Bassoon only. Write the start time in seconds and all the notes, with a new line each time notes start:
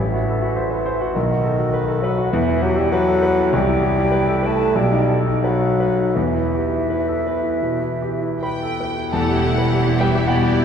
Already playing: E3
1.15 D#3
2.02 F#3
2.32 E3
2.62 F#3
2.78 G3
2.92 F#3
3.54 G3
4.47 A3
4.77 G3
5.44 F#3
6.15 E3
9.11 G3